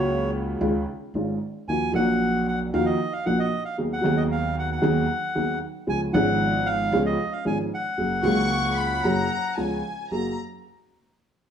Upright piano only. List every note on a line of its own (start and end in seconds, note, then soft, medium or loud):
0.00 0.57 C#2 medium
0.00 0.57 C#3 medium
0.00 0.56 F#3 medium
0.00 0.57 A#3 medium
0.00 0.58 F#4 medium
0.61 0.83 C#2 medium
0.61 0.83 C#3 medium
0.61 0.83 D#3 medium
0.61 0.83 G#3 medium
0.61 0.83 C#4 medium
0.61 0.83 F4 medium
1.15 1.37 G#1 medium
1.15 1.37 G#2 medium
1.15 1.37 D#3 soft
1.15 1.37 G#3 soft
1.15 1.37 C#4 soft
1.15 1.37 F4 medium
1.69 1.90 D#2 medium
1.69 1.91 D#3 medium
1.69 1.91 F3 soft
1.69 1.90 A#3 soft
1.69 1.91 D#4 soft
1.69 1.91 F#4 medium
1.93 2.69 A#1 medium
1.93 2.70 A#2 medium
1.93 2.69 F#3 medium
1.93 2.69 A#3 medium
1.93 2.70 D#4 medium
1.97 2.71 F#4 medium
2.73 2.96 D#2 medium
2.73 2.96 D#3 medium
2.73 2.95 F3 medium
2.73 2.95 A#3 medium
2.73 2.96 D#4 medium
2.73 2.96 F#4 medium
3.26 3.48 A#1 medium
3.26 3.48 A#2 medium
3.26 3.48 F3 medium
3.26 3.48 A#3 soft
3.26 3.48 D#4 soft
3.26 3.48 F#4 medium
3.78 4.01 D#2 medium
3.78 4.01 D#3 medium
3.78 4.00 F#3 soft
3.78 4.00 B3 soft
3.78 4.01 D#4 soft
3.78 4.01 G#4 medium
4.01 4.79 D#2 medium
4.01 4.79 D#3 medium
4.01 4.78 F#3 medium
4.01 4.79 B3 medium
4.01 4.80 D#4 medium
4.06 4.80 G#4 medium
4.82 5.05 D#2 medium
4.82 5.05 D#3 medium
4.82 5.05 F#3 medium
4.82 5.05 B3 medium
4.82 5.05 D#4 medium
4.82 5.05 G#4 medium
5.35 5.58 D#2 medium
5.35 5.58 D#3 medium
5.35 5.57 F#3 medium
5.35 5.58 B3 soft
5.35 5.58 D#4 soft
5.35 5.58 G#4 medium
5.87 6.10 C#2 medium
5.87 6.10 C#3 medium
5.87 6.10 F3 medium
5.87 6.09 B3 soft
5.87 6.10 C#4 soft
5.87 6.10 G#4 medium
6.13 6.89 G#1 loud
6.13 6.89 G#2 medium
6.13 6.88 F3 medium
6.13 6.89 B3 medium
6.13 6.89 C#4 medium
6.13 6.90 G#4 medium
6.93 7.15 C#2 medium
6.93 7.15 C#3 medium
6.93 7.15 F3 medium
6.93 7.15 B3 medium
6.93 7.15 C#4 medium
6.93 7.15 G#4 medium
7.45 7.67 G#1 medium
7.45 7.67 G#2 medium
7.45 7.68 F3 medium
7.45 7.68 B3 soft
7.45 7.68 C#4 soft
7.45 7.68 G#4 medium
7.98 8.20 F#2 medium
7.98 8.20 F#3 medium
7.98 8.20 A#3 soft
7.98 8.21 C#4 soft
7.98 8.21 G#4 medium
8.23 9.00 C#2 medium
8.23 9.00 C#3 medium
8.23 8.99 F#3 medium
8.23 9.00 A#3 medium
8.23 9.00 C#4 medium
8.27 9.01 G#4 medium
9.04 9.26 F#2 medium
9.04 9.26 F#3 medium
9.04 9.26 A#3 medium
9.04 9.26 C#4 medium
9.04 9.26 G#4 medium
9.57 9.80 C#2 medium
9.57 9.80 C#3 medium
9.57 9.80 F3 soft
9.57 9.80 B3 soft
9.57 9.80 C#4 soft
9.57 9.80 G#4 medium
10.12 10.33 F#2 medium
10.12 10.34 A#3 medium
10.12 10.33 F#4 soft
10.12 10.34 G#4 medium